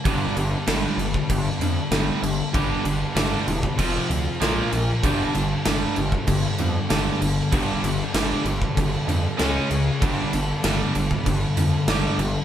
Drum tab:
CC |x-x-x-x-x-x-x-x-|x-x-x-x-x-x-x-x-|x-x-x-x-x-x-x-x-|x-x-x-x-x-x-x-x-|
SD |----o-------o---|----o-------o---|----o-------o---|----o-------o---|
BD |o------oo-------|o------oo-------|o------oo-------|o------oo-------|

CC |x-x-x-x-x-x-x-x-|
SD |----o-------o---|
BD |o------oo-------|